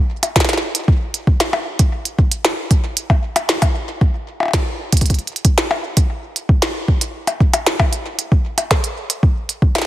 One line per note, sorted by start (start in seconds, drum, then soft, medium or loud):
0.23 closed hi-hat medium
0.23 percussion blips soft
0.36 kick loud
0.36 snare loud
0.40 snare medium
0.45 snare medium
0.49 snare medium
0.49 closed hi-hat medium
0.53 snare soft
0.57 snare soft
0.75 closed hi-hat medium
0.88 kick loud
1.14 closed hi-hat medium
1.27 kick loud
1.40 snare loud
1.40 closed hi-hat medium
1.40 percussion blips medium
1.53 percussion blips medium
1.79 kick loud
1.79 closed hi-hat medium
2.05 closed hi-hat medium
2.19 kick loud
2.32 closed hi-hat medium
2.45 snare loud
2.71 kick loud
2.71 closed hi-hat medium
2.97 closed hi-hat medium
3.10 kick loud
3.10 percussion blips soft
3.36 closed hi-hat loud
3.36 percussion blips medium
3.49 snare loud
3.62 kick loud
3.62 closed hi-hat medium
3.62 percussion blips medium
4.01 kick loud
4.40 percussion blips soft
4.43 percussion blips soft
4.45 percussion blips soft
4.48 percussion blips soft
4.53 kick loud
4.53 snare loud
4.53 closed hi-hat medium
4.92 kick loud
4.92 closed hi-hat medium
4.97 closed hi-hat medium
5.01 kick medium
5.01 closed hi-hat medium
5.06 closed hi-hat soft
5.10 kick medium
5.10 closed hi-hat soft
5.14 closed hi-hat soft
5.19 closed hi-hat soft
5.27 closed hi-hat soft
5.36 closed hi-hat soft
5.45 kick loud
5.45 closed hi-hat loud
5.58 snare loud
5.71 percussion blips medium
5.97 kick loud
5.97 closed hi-hat medium
6.36 closed hi-hat medium
6.49 kick loud
6.62 snare loud
6.62 closed hi-hat medium
6.88 kick loud
7.01 closed hi-hat medium
7.27 closed hi-hat soft
7.27 percussion blips soft
7.40 kick loud
7.53 closed hi-hat medium
7.53 percussion blips medium
7.66 snare loud
7.80 kick loud
7.80 percussion blips medium
7.93 closed hi-hat medium
8.19 closed hi-hat medium
8.32 kick loud
8.58 closed hi-hat medium
8.58 percussion blips soft
8.71 kick loud
8.71 snare loud
8.84 closed hi-hat medium
9.10 closed hi-hat medium
9.23 kick loud
9.49 closed hi-hat soft
9.62 kick loud
9.75 snare loud
9.75 closed hi-hat medium
9.75 percussion blips medium
9.78 snare medium
9.82 snare medium